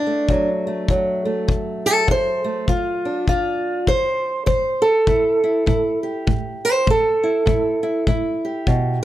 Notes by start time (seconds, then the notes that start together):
Already playing: D2 D4
0.07 A3
0.29 D2 F#3, kick
0.67 A3
0.88 D2 F#3, kick
1.25 A3
1.48 D2, kick
1.86 A4
2.07 D2 C5, kick
2.44 A3
2.68 D2 F4, kick
3.05 D4
3.28 D2 F4, kick
3.87 D2 C5, kick
4.46 A2 C5, kick
4.82 A4
5.07 A2 E4, kick
5.44 E4
5.66 A2 E4, kick
6.03 G4
6.27 A2, kick
6.65 C5
6.87 A2 A4, kick
7.24 E4
7.46 A2 E4, kick
7.83 E4
8.07 A2 E4, kick
8.45 G4
8.67 B2, kick